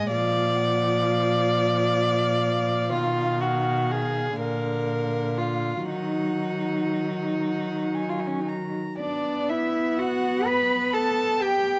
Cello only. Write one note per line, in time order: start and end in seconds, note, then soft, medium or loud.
0.10 2.93 A#2 soft
2.92 4.38 B2 soft
4.38 5.85 A#2 soft
5.88 8.75 D#3 soft
9.01 9.52 D4 medium
9.50 10.00 E4 medium
9.99 10.47 F#4 medium
10.46 10.95 B4 medium
10.93 11.43 A4 medium
11.42 11.79 G4 medium